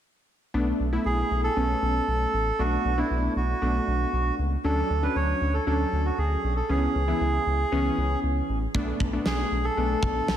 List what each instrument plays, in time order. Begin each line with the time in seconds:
0.54 analog synth bass B1, synth keys A3 B3 D4
0.80 analog synth bass B1
0.93 synth keys A3 B3 E4
1.05 analog synth bass B1, melodica G#4
1.31 analog synth bass B1
1.44 melodica A4
1.56 analog synth bass B1, synth keys A3 B3 C#4
1.82 analog synth bass B1
2.08 analog synth bass B1
2.33 analog synth bass A1
2.59 analog synth bass B1, synth keys A3 B3 D4, melodica F#4
2.85 analog synth bass B1
2.98 synth keys A3 B3 D4, melodica E4
3.10 analog synth bass B1
3.36 analog synth bass B1, melodica F#4
3.62 analog synth bass B1, synth keys A3 B3 D4
3.87 analog synth bass B1
4.13 analog synth bass B1
4.39 analog synth bass C#2
4.64 analog synth bass D2, synth keys F#3 C#4 D4, melodica A4
4.90 analog synth bass D2
5.03 synth keys F#3 C#4 D4, melodica B4
5.16 analog synth bass D2, melodica C#5
5.41 analog synth bass D2
5.54 melodica A4
5.67 analog synth bass D2, synth keys F#3 C#4 D4, melodica A4
5.92 analog synth bass D2
6.05 melodica F#4
6.18 analog synth bass D2, melodica G#4
6.44 analog synth bass B1
6.56 melodica A4
6.69 analog synth bass C#2, synth keys E3 B3 C#4, melodica G#4
6.95 analog synth bass C#2
7.08 synth keys E3 B3 E4
7.21 analog synth bass C#2
7.46 analog synth bass C#2
7.72 analog synth bass C#2, synth keys E3 B3 C#4
7.98 analog synth bass C#2
8.23 analog synth bass C#2
8.49 analog synth bass A1
8.75 analog synth bass B1, synth keys A3 B3 D4, kick
9.00 analog synth bass B1, kick
9.13 synth keys A3 B3 D4
9.26 analog synth bass B1, melodica G#4, snare
9.51 analog synth bass B1
9.65 melodica A4
9.77 analog synth bass B1, synth keys A3 B3 D4
10.03 analog synth bass B1, kick
10.28 analog synth bass B1, snare